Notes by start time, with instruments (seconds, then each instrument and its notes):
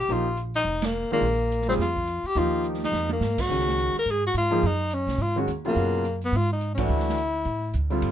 0.00 tenor saxophone G4
0.09 upright bass A#1, grand piano F3 A#3 D#4 G4, tenor saxophone F4, open hi-hat
0.37 closed hi-hat
0.54 tenor saxophone D#4, open hi-hat
0.64 upright bass F1, open hi-hat
0.82 tenor saxophone A#3, snare, ride
1.10 grand piano D#3 G#3 D4 F4, tenor saxophone A#3, muted upright bass stroke, open hi-hat
1.21 upright bass A#1, open hi-hat
1.52 closed hi-hat
1.61 snare
1.68 grand piano G3 C4 F4 G#4, tenor saxophone C4, snare, open hi-hat
1.78 upright bass F2, tenor saxophone F4, snare, open hi-hat
1.96 kick
2.07 closed hi-hat
2.24 tenor saxophone G4, muted upright bass stroke, open hi-hat
2.35 upright bass D#2, grand piano F3 A#3 D#4 G4, tenor saxophone F4, open hi-hat
2.64 closed hi-hat
2.74 snare
2.81 tenor saxophone D#4, snare, open hi-hat
2.92 upright bass F2, snare
3.09 tenor saxophone A#3, high tom
3.20 upright bass G#2, snare
3.38 tenor saxophone F#4, kick, crash
3.49 upright bass C#2, grand piano D#3 G#3 C#4 F#4
3.59 snare
3.69 snare
3.78 closed hi-hat
3.94 muted upright bass stroke, open hi-hat
3.99 tenor saxophone A#4
4.06 upright bass G#2, open hi-hat
4.11 tenor saxophone G#4
4.27 tenor saxophone F#4
4.34 upright bass G#2, tenor saxophone F4, closed hi-hat
4.51 grand piano F3 A#3 D#4 G#4, open hi-hat
4.63 upright bass F#2, tenor saxophone D#4, open hi-hat
4.91 tenor saxophone C#4, closed hi-hat
5.07 upright bass C2, snare, open hi-hat
5.18 upright bass G#2, open hi-hat
5.22 tenor saxophone F4
5.36 grand piano D#3 G#3 C#4 F#4
5.47 upright bass D#2, closed hi-hat
5.65 grand piano B2 C#3 F#3 F4, tenor saxophone A#3, open hi-hat
5.76 upright bass F#2, open hi-hat
6.05 closed hi-hat
6.21 tenor saxophone B3, open hi-hat
6.32 upright bass G#2, open hi-hat
6.37 tenor saxophone F4
6.53 tenor saxophone D#4
6.61 closed hi-hat
6.75 grand piano E3 A3 D4, tenor saxophone C#4, kick, ride
6.79 grand piano F#4
6.84 tenor saxophone E4
6.89 upright bass D2
6.99 snare
7.09 snare
7.18 closed hi-hat
7.45 upright bass A2, open hi-hat
7.74 upright bass D2, closed hi-hat
7.90 grand piano D3 G3 C4 F4, open hi-hat
8.02 upright bass G2, ride